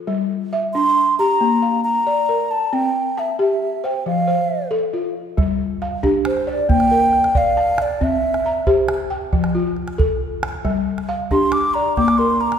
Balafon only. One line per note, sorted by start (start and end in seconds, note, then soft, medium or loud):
0.00 0.30 F4 medium
0.07 0.52 G3 medium
0.53 1.19 E5 medium
0.75 1.19 D4 medium
1.19 1.63 G4 medium
1.41 1.85 A#3 medium
1.62 2.29 F5 medium
2.07 2.51 D5 medium
2.29 2.95 A#4 medium
2.73 3.17 C4 medium
3.17 3.83 A5 medium
3.39 3.83 G4 medium
3.84 4.26 C5 medium
4.06 4.50 F3 medium
4.28 4.94 C5 medium
4.71 5.15 A4 medium
4.93 5.60 F4 medium
5.37 5.82 G3 medium
5.82 6.48 F5 medium
6.03 6.47 D4 medium
6.03 6.70 G4 medium
6.47 6.91 D5 medium
6.69 7.13 A#3 medium
6.91 7.57 A#4 medium
7.35 7.79 D5 medium
7.57 8.23 A5 medium
8.01 8.45 C4 medium
8.46 9.12 A#5 medium
8.67 9.11 G4 medium
8.67 9.33 C5 medium
9.10 9.55 G5 medium
9.33 9.77 F3 medium
9.55 10.21 F4 medium
9.98 10.43 A4 medium
10.65 11.09 G3 medium
11.09 11.75 F5 medium
11.31 11.75 D4 medium
11.31 11.97 G4 medium
11.75 12.19 D5 medium
11.98 12.41 A#3 medium
12.19 12.59 A#4 medium